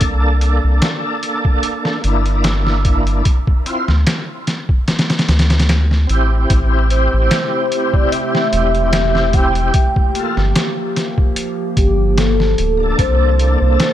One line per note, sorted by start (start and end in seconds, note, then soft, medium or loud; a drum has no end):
0.00 0.60 C2 loud
0.00 1.98 A#3 medium
0.00 2.00 D4 medium
0.00 2.01 A4 medium
0.00 kick loud
0.00 closed hi-hat medium
0.41 closed hi-hat medium
0.64 0.80 C2 medium
0.82 snare loud
0.82 closed hi-hat medium
1.23 closed hi-hat medium
1.45 kick medium
1.63 closed hi-hat medium
1.85 snare medium
2.02 3.22 G1 medium
2.02 3.22 A#3 medium
2.02 3.24 D4 medium
2.02 closed hi-hat medium
2.08 3.25 E4 loud
2.26 closed hi-hat soft
2.44 snare loud
2.44 closed hi-hat medium
2.67 snare soft
2.85 kick medium
2.85 closed hi-hat medium
3.07 closed hi-hat soft
3.25 kick loud
3.25 closed hi-hat medium
3.47 kick medium
3.66 3.95 C4 medium
3.66 3.96 E4 medium
3.66 3.97 F4 medium
3.66 closed hi-hat medium
3.88 4.05 D2 medium
3.88 snare soft
4.07 snare loud
4.07 closed hi-hat medium
4.47 snare medium
4.47 closed hi-hat medium
4.69 kick medium
4.88 snare medium
4.88 closed hi-hat medium
4.99 snare medium
4.99 closed hi-hat medium
5.10 snare medium
5.10 closed hi-hat medium
5.19 snare medium
5.19 closed hi-hat medium
5.29 6.06 D2 medium
5.29 snare medium
5.29 closed hi-hat medium
5.39 snare medium
5.39 closed hi-hat medium
5.50 snare medium
5.50 closed hi-hat medium
5.60 snare medium
5.60 closed hi-hat medium
5.69 snare loud
5.69 closed hi-hat medium
5.91 snare soft
6.07 6.46 A1 medium
6.07 8.47 C4 medium
6.07 8.49 E4 medium
6.07 closed hi-hat medium
6.13 8.50 G4 medium
6.48 7.08 A1 loud
6.48 9.71 C3 medium
6.48 9.70 A3 medium
6.48 12.94 G4 medium
6.48 kick loud
6.48 closed hi-hat medium
6.90 7.95 C5 medium
6.90 closed hi-hat medium
7.13 7.29 A1 medium
7.31 snare loud
7.31 closed hi-hat medium
7.72 closed hi-hat medium
7.94 8.11 D5 medium
7.94 kick medium
8.11 9.29 E5 loud
8.11 closed hi-hat medium
8.35 snare medium
8.51 9.71 E1 medium
8.51 9.71 C4 medium
8.51 9.73 E4 medium
8.51 closed hi-hat medium
8.57 9.74 G4 loud
8.75 closed hi-hat soft
8.93 snare loud
8.93 closed hi-hat medium
9.15 snare soft
9.33 9.72 G5 loud
9.33 kick medium
9.33 closed hi-hat medium
9.55 closed hi-hat soft
9.74 12.96 F3 medium
9.74 12.95 A#3 medium
9.74 10.52 G5 loud
9.74 kick loud
9.74 closed hi-hat medium
9.96 kick medium
10.15 10.44 A#3 medium
10.15 10.45 F4 medium
10.15 10.46 A4 medium
10.15 closed hi-hat medium
10.37 10.53 G1 medium
10.37 snare soft
10.56 snare loud
10.56 closed hi-hat medium
10.96 snare medium
10.96 closed hi-hat medium
11.18 kick medium
11.36 closed hi-hat medium
11.77 12.55 G1 medium
11.77 12.19 G4 medium
11.77 kick medium
11.77 closed hi-hat medium
12.18 12.97 A4 loud
12.18 snare loud
12.18 closed hi-hat medium
12.40 snare soft
12.58 12.94 D1 medium
12.58 closed hi-hat medium
12.78 13.93 A#3 medium
12.78 13.93 D4 medium
12.83 13.93 A4 medium
12.97 13.57 C2 loud
12.97 13.93 C3 medium
12.97 13.93 A#3 medium
12.97 13.93 E4 medium
12.97 13.57 C5 loud
12.97 kick loud
12.97 closed hi-hat medium
13.39 closed hi-hat medium
13.60 13.78 C2 medium
13.60 13.93 C5 loud
13.80 snare loud
13.80 closed hi-hat medium